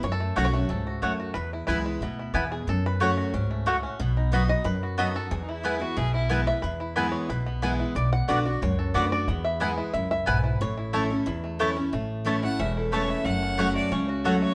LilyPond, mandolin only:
\new Staff \with { instrumentName = "Mandolin" } { \time 4/4 \key a \major \tempo 4 = 182 r4 <a fis' cis'' fis''>8 r4. <a fis' cis'' fis''>8 r8 | r4 <b e' b' gis''>8 r4. <b e' b' gis''>8 r8 | r4 <a fis' cis'' fis''>8 r4. <a fis' cis'' fis''>8 r8 | r4 <b fis' dis'' b''>8 r4. <b fis' dis'' b''>8 r8 |
r4 <b e' b' gis''>8 r4. <b e' b' gis''>8 r8 | r4 <b e' b' gis''>8 r4. <b e' b' gis''>8 r8 | r4 <b fis' d'' fis''>8 r4. <b fis' d'' fis''>8 r8 | r4 <b e' b' gis''>8 r4. <b e' b' gis''>8 r8 |
r4 <a e' cis'' a''>8 r4. <a e' cis'' a''>8 r8 | r4 <a e' cis'' a''>8 r4. <a e' cis'' a''>8 r8 | r4 <a fis' cis'' fis''>8 r4. <a fis' cis'' fis''>8 r8 | }